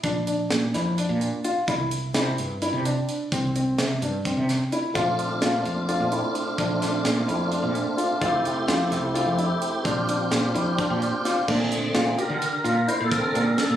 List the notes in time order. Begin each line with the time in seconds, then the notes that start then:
0.03 A#1 D4, kick, closed hi-hat
0.27 D4, closed hi-hat
0.50 A#2, snare, closed hi-hat
0.74 F2 E4, snare, closed hi-hat
0.98 D4, closed hi-hat
1.09 A#2
1.21 closed hi-hat
1.44 F4, closed hi-hat
1.68 C2 E4, kick, closed hi-hat
1.91 closed hi-hat
2.14 C3 E4, snare, closed hi-hat
2.38 G2, closed hi-hat
2.62 E4, closed hi-hat
2.73 C3
2.85 D4, closed hi-hat
3.08 closed hi-hat
3.32 C2 C4, kick, closed hi-hat
3.55 C4, closed hi-hat
3.79 C3, snare, closed hi-hat
4.02 G2 D4, closed hi-hat
4.25 C4, kick, closed hi-hat
4.37 C3
4.49 snare, closed hi-hat
4.72 E4, closed hi-hat
4.94 A#1 A3 C4 D4 F4, kick, closed hi-hat
5.19 closed hi-hat
5.42 A#2 F4, snare, closed hi-hat
5.65 F2, closed hi-hat
5.88 F4, closed hi-hat
6.00 A#2
6.12 E4, closed hi-hat
6.35 closed hi-hat
6.58 A#1 D4, kick, closed hi-hat
6.82 D4, snare, closed hi-hat
7.04 A#2, snare, closed hi-hat
7.28 F2 E4, closed hi-hat
7.51 D4, closed hi-hat
7.63 A#2
7.75 closed hi-hat
7.97 F4, closed hi-hat
8.20 F1 A3 C4 E4 F4 G4, kick, closed hi-hat
8.45 closed hi-hat
8.68 F2 F4, snare, closed hi-hat
8.91 C2, snare, closed hi-hat
9.14 F4, closed hi-hat
9.26 F2
9.38 E4, closed hi-hat
9.62 closed hi-hat
9.83 A#1 C4 D4 F4 G4, kick, closed hi-hat
10.08 D4, closed hi-hat
10.31 A#2, snare, closed hi-hat
10.54 F2 E4, closed hi-hat
10.78 D4, kick, closed hi-hat
10.90 A#2
11.02 closed hi-hat
11.25 F4, snare, closed hi-hat
11.47 A#2 D3 A3 C4 D4, kick, crash
11.72 closed hi-hat
11.95 A#2 F4, snare, closed hi-hat
12.18 G4 A#4, closed hi-hat
12.29 D3
12.42 closed hi-hat
12.64 A#2 F4, closed hi-hat
12.88 E4 C5, closed hi-hat
13.00 A#2 A4
13.11 D3 C4 A4 A#4, kick, closed hi-hat
13.35 A#2 D4, closed hi-hat
13.58 A4, snare, closed hi-hat
13.70 A#2